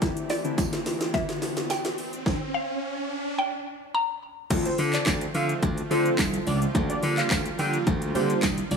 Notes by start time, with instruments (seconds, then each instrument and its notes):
Already playing: supersaw synth D2 D4 G4 D5, riser
0.02 synth keys D3 C4 D4 E4, supersaw synth E3 C4, kick, snare, closed hi-hat, shaker
0.17 closed hi-hat, shaker
0.30 synth pluck D5, snare, open hi-hat, shaker
0.44 synth keys D3 C4 D4 E4, closed hi-hat, shaker
0.58 kick, snare, closed hi-hat, tambourine, shaker
0.73 snare, closed hi-hat, shaker
0.86 snare, open hi-hat, shaker
1.01 snare, closed hi-hat, shaker
1.14 synth keys D3 C4 D4 E4, synth pluck E5, kick, snare, closed hi-hat, shaker
1.29 snare, closed hi-hat, shaker
1.42 snare, open hi-hat, shaker
1.57 snare, closed hi-hat, shaker
1.70 synth pluck G5, snare, closed hi-hat, tambourine, shaker
1.85 snare, closed hi-hat, shaker
1.98 open hi-hat, shaker
2.13 closed hi-hat, shaker
2.26 kick, snare
2.54 synth pluck F5
3.39 synth pluck G5
3.95 synth pluck A#5
4.50 slap bass D2, supersaw synth D3 F3 A3 C4 F4, synth keys C4 D4 F4 A4, kick, closed hi-hat, crash, shaker
4.65 analog synth lead C5, closed hi-hat, shaker
4.78 slap bass D3, open hi-hat, shaker
4.93 analog synth lead D5, clap, closed hi-hat, shaker
5.06 slap bass D2, kick, snare, clap, closed hi-hat, tambourine, shaker
5.21 closed hi-hat, shaker
5.34 slap bass D3, analog synth lead F5, open hi-hat, shaker
5.49 closed hi-hat, shaker
5.63 slap bass D2, kick, closed hi-hat, shaker
5.78 closed hi-hat, shaker
5.90 slap bass D3, synth keys C4 D4 F4 A4, analog synth lead C5, open hi-hat, shaker
6.06 closed hi-hat, shaker
6.18 slap bass C2, kick, snare, clap, closed hi-hat, tambourine, shaker
6.34 closed hi-hat, shaker
6.47 slap bass C#2, analog synth lead D5, open hi-hat, shaker
6.62 closed hi-hat, shaker
6.75 slap bass D2, supersaw synth G3 A#3, synth keys A#3 D4 F4 G4, kick, closed hi-hat, shaker
6.90 analog synth lead D5, closed hi-hat, shaker
7.03 slap bass D3, open hi-hat, shaker
7.17 analog synth lead F5, clap, closed hi-hat, shaker
7.30 slap bass D2, kick, snare, clap, closed hi-hat, tambourine, shaker
7.46 closed hi-hat, shaker
7.59 slap bass D3, analog synth lead G5, open hi-hat, shaker
7.74 closed hi-hat, shaker
7.87 slap bass D2, kick, closed hi-hat, shaker
8.02 closed hi-hat, shaker
8.15 slap bass D3, synth keys A#3 D4 F4 G4, analog synth lead C5, open hi-hat, shaker
8.30 closed hi-hat, shaker
8.42 slap bass C2, kick, snare, clap, closed hi-hat, tambourine, shaker
8.58 closed hi-hat, shaker
8.71 slap bass C#2, analog synth lead D5, open hi-hat, shaker